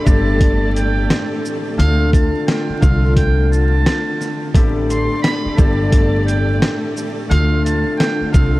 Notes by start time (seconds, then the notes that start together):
Already playing: A3 G4 A4 D5
0.05 G1 A2 A3 B3 C4 D4 G4 A5, kick, shaker
0.41 kick, closed hi-hat
0.76 G5, closed hi-hat, shaker
1.10 snare, closed hi-hat
1.45 shaker
1.77 D2 D3 A3 C4 F4 F5, closed hi-hat
2.13 A5, kick, closed hi-hat, shaker
2.46 G5, snare, closed hi-hat
2.69 muted upright bass stroke
2.81 C2 D3 A3 C4 F4 F5, kick, shaker
3.16 G5, kick, closed hi-hat
3.51 A5, shaker
3.86 snare, closed hi-hat
4.21 snare, shaker
4.54 A1 A2 A3 B3 C4 D4 G4 A4 D5, kick, closed hi-hat
4.90 C6, closed hi-hat, shaker
5.22 B5, snare, closed hi-hat
5.45 muted upright bass stroke
5.56 G1 A2 A3 B3 C4 D4 G4 A5, kick, shaker
5.92 kick, closed hi-hat
6.26 G5, closed hi-hat, shaker
6.62 snare, closed hi-hat
6.97 shaker
7.29 D2 D3 A3 C4 F4 F5, closed hi-hat
7.65 A5, closed hi-hat, shaker
7.97 G5, snare, closed hi-hat
8.21 muted upright bass stroke
8.32 C2 D3 A3 C4 F4 F5, kick, shaker